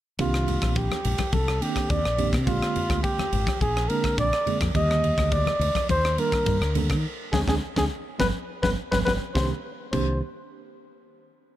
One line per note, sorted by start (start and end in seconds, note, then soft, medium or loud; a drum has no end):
0.19 0.58 C2 medium
0.19 0.95 D#3 medium
0.19 0.95 A#3 medium
0.19 0.95 C4 medium
0.19 0.96 D4 medium
0.19 0.79 F4 medium
0.19 0.96 G4 medium
0.19 kick medium
0.19 ride medium
0.34 cross-stick medium
0.48 ride soft
0.48 low conga medium
0.62 0.88 A#1 medium
0.62 kick medium
0.62 cross-stick medium
0.62 ride medium
0.76 1.35 G4 medium
0.76 kick medium
0.76 ride soft
0.91 cross-stick medium
0.91 high conga medium
1.05 1.18 A#1 medium
1.05 ride medium
1.05 low conga medium
1.18 kick medium
1.18 cross-stick medium
1.18 ride medium
1.18 high conga medium
1.33 1.59 C2 medium
1.33 1.63 A4 medium
1.33 kick medium
1.33 ride medium
1.33 high conga medium
1.48 cross-stick medium
1.61 2.00 D#3 medium
1.61 1.99 A#3 medium
1.61 2.00 C4 medium
1.61 2.00 D4 medium
1.61 1.92 G4 medium
1.61 2.00 G4 medium
1.61 ride medium
1.76 kick medium
1.76 cross-stick medium
1.76 ride medium
1.90 2.03 D#2 medium
1.90 2.33 D5 medium
1.90 kick medium
1.90 ride medium
2.05 2.34 A#1 medium
2.05 cross-stick medium
2.17 2.37 D#3 medium
2.17 2.37 A#3 medium
2.17 2.37 C4 medium
2.17 2.38 D4 medium
2.17 2.38 G4 medium
2.17 ride medium
2.17 low conga medium
2.32 2.48 C3 medium
2.32 kick medium
2.32 cross-stick medium
2.32 ride medium
2.46 2.60 A#1 loud
2.46 3.23 D3 medium
2.46 3.23 G#3 medium
2.46 3.23 A#3 medium
2.46 3.23 C4 medium
2.46 3.00 F4 medium
2.46 3.24 G4 medium
2.46 kick medium
2.46 ride medium
2.62 cross-stick medium
2.75 muted fretless electric bass stroke soft
2.75 ride medium
2.75 low conga medium
2.89 3.03 D2 medium
2.89 kick medium
2.89 cross-stick medium
2.89 ride soft
3.03 3.57 G4 medium
3.03 kick medium
3.03 ride medium
3.19 muted fretless electric bass stroke soft
3.19 cross-stick medium
3.19 high conga medium
3.32 3.46 G#1 medium
3.32 ride medium
3.32 low conga medium
3.47 kick medium
3.47 cross-stick medium
3.47 ride soft
3.47 high conga medium
3.61 3.87 A#1 medium
3.61 3.90 G#4 medium
3.61 kick medium
3.61 ride medium
3.61 high conga medium
3.77 cross-stick medium
3.89 4.28 D3 medium
3.89 4.28 G#3 medium
3.89 4.28 A#3 medium
3.89 4.28 C4 medium
3.89 4.28 D4 medium
3.89 4.18 A#4 medium
3.89 ride medium
4.04 kick medium
4.04 cross-stick medium
4.04 ride medium
4.18 4.31 A#1 medium
4.18 4.59 D5 loud
4.18 kick medium
4.18 ride medium
4.33 cross-stick medium
4.46 4.66 D3 medium
4.46 4.66 G#3 medium
4.46 4.66 A#3 medium
4.46 4.66 C4 medium
4.46 4.66 G#4 medium
4.46 muted fretless electric bass stroke soft
4.46 ride medium
4.46 low conga medium
4.61 4.74 F2 medium
4.61 kick medium
4.61 cross-stick medium
4.61 ride medium
4.74 5.14 D#2 medium
4.74 5.51 D3 medium
4.74 5.51 D#3 medium
4.74 5.51 G3 medium
4.74 5.51 A#3 medium
4.74 5.52 G4 medium
4.74 5.34 D#5 loud
4.74 kick medium
4.74 ride medium
4.91 cross-stick medium
5.04 ride medium
5.04 low conga medium
5.18 5.44 D2 medium
5.18 kick medium
5.18 cross-stick medium
5.18 ride medium
5.32 5.90 D5 medium
5.32 kick medium
5.32 ride medium
5.47 cross-stick medium
5.47 high conga medium
5.59 5.73 D2 medium
5.59 ride medium
5.59 low conga medium
5.75 kick medium
5.75 cross-stick medium
5.75 ride medium
5.75 high conga medium
5.89 6.16 D#2 medium
5.89 6.21 C5 loud
5.89 kick medium
5.89 ride medium
5.89 high conga medium
6.05 cross-stick medium
6.18 6.56 D#3 medium
6.18 6.56 G3 medium
6.18 6.57 A#3 medium
6.18 6.57 D4 medium
6.18 6.76 A#4 medium
6.18 6.58 A#4 medium
6.18 ride medium
6.32 kick medium
6.32 cross-stick medium
6.32 ride medium
6.46 6.60 G2 medium
6.46 kick loud
6.46 ride medium
6.61 6.91 D2 medium
6.61 cross-stick medium
6.75 6.95 D#3 medium
6.75 6.95 G3 medium
6.75 6.95 A#3 medium
6.75 6.95 D4 medium
6.75 6.95 A4 medium
6.75 ride medium
6.75 low conga medium
6.90 7.04 D#3 medium
6.90 kick medium
6.90 cross-stick medium
6.90 ride medium
7.32 7.44 D2 medium
7.32 7.43 G#3 medium
7.32 7.43 C4 medium
7.32 7.43 D4 medium
7.32 7.40 G#4 medium
7.32 kick medium
7.32 snare medium
7.32 high conga medium
7.47 7.58 D2 medium
7.47 7.57 G#3 medium
7.47 7.57 C4 medium
7.47 7.57 D4 medium
7.47 7.55 G#4 medium
7.47 kick medium
7.47 snare medium
7.47 high conga medium
7.76 7.87 D2 medium
7.76 7.86 G#3 medium
7.76 7.86 C4 medium
7.76 7.86 D4 medium
7.76 7.84 G#4 medium
7.76 kick medium
7.76 snare medium
7.76 high conga medium
8.19 8.31 G1 medium
8.19 8.29 F3 medium
8.19 8.29 G3 medium
8.19 8.29 B3 medium
8.19 8.27 B4 medium
8.19 kick medium
8.19 snare medium
8.19 high conga medium
8.62 8.74 G1 medium
8.62 8.73 F3 medium
8.62 8.73 G3 medium
8.62 8.73 B3 medium
8.62 8.70 B4 medium
8.62 kick medium
8.62 snare medium
8.62 high conga medium
8.92 9.03 G1 medium
8.92 9.01 F3 medium
8.92 9.01 G3 medium
8.92 9.02 B3 medium
8.92 8.99 B4 medium
8.92 kick medium
8.92 snare medium
8.92 high conga loud
9.05 9.17 G1 medium
9.05 9.16 F3 medium
9.05 9.16 G3 loud
9.05 9.16 B3 medium
9.05 9.12 B4 medium
9.05 kick medium
9.05 snare medium
9.05 high conga medium
9.33 9.51 C2 medium
9.33 9.52 D#3 medium
9.33 9.51 A#3 medium
9.33 9.51 C4 medium
9.33 9.51 D4 medium
9.33 9.51 G4 medium
9.33 9.50 C5 medium
9.33 kick loud
9.33 snare medium
9.33 high conga medium
9.92 10.20 C2 medium
9.92 10.20 D#3 medium
9.92 10.20 A#3 medium
9.92 10.20 C4 medium
9.92 10.20 D4 medium
9.92 10.20 G4 medium
9.92 10.19 C5 medium
9.92 kick medium
9.92 crash medium
9.92 high conga medium